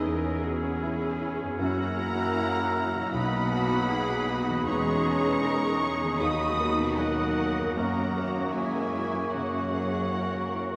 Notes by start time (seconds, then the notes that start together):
Already playing: E2 E3 B3 C#4 D#4 G#4 B4 C#5 D#5 E6
0.05 E2 B3 G#4 A#4
0.24 C#5
0.43 F#4 G#4
0.63 C#4
0.83 C#4 E4
1.03 G#4
1.21 E4
1.40 F#2 G#4
1.46 C#4
1.50 E4
1.54 F#4
1.59 F#2 F#3 A#3 E4 F#4 A#4 F#5 A#5 E6
1.78 C#5
1.97 E4 F#4
2.15 C#4
2.36 E4
2.56 F#4
2.76 E4
2.95 B2 F#4
3.00 F#3
3.05 D#4
3.09 A#3 F#4 F#5
3.13 B1 B2 D#4 B4 B5 D#6
3.33 D#5
3.53 F#4
3.71 B2
3.89 D#4 G#4
4.10 F#4
4.28 D#4 F#4
4.48 E3 F#4
4.53 B2
4.57 D#4
4.62 G#3 G#4
4.66 E2 G#3 C#4 G#4 C#5 A#5 C#6
4.87 B4
5.06 G#4
5.26 B3
5.43 D#4 A#4
5.63 G#4
5.82 D#4 G#4
6.02 D#3 G#4
6.06 A#3
6.11 D#4
6.15 F#3 F#4
6.19 D#2 A#3 D#4 F#4 D#5 B5 D#6
6.41 D#5
6.60 A#3
6.79 B2
6.97 F#3 D#4 F#4 A#4 D#5 F#5
7.19 A#4
7.40 D#4
7.58 F#2 A#4
7.63 C#4
7.67 E4
7.72 A#4 A#5
7.76 F#2 A#3 C#4 A#4 F#5 C#6
7.98 C#5
8.15 F#4 A#4
8.37 C#4
8.53 G#3 E4 G#4 E5 G#5
8.75 A#4
8.94 E4
9.15 A#4
9.30 C#3 F#3 F#4 C#5 F#5
9.54 C#5
9.71 G#4 A#4
9.92 C#4
10.11 E4 A#4
10.32 A#4
10.52 E4
10.71 A#4